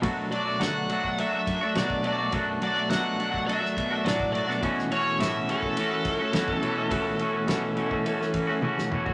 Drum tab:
RD |x-x-x-x-x-x-x-x-|x-x-x-x-x-x-x-x-|x-x-x-x-x-x-x-x-|x-x-x-x-x-x-----|
SD |----o-------o---|----o----o--o--o|-o--o-------o---|----o----o---o--|
T1 |----------------|----------------|----------------|------------o---|
T2 |----------------|----------------|----------------|--------------o-|
FT |----------------|----------------|----------------|---------------o|
BD |o------o--o--o--|o------o--o--o--|o------o--o--o--|o------o--o-----|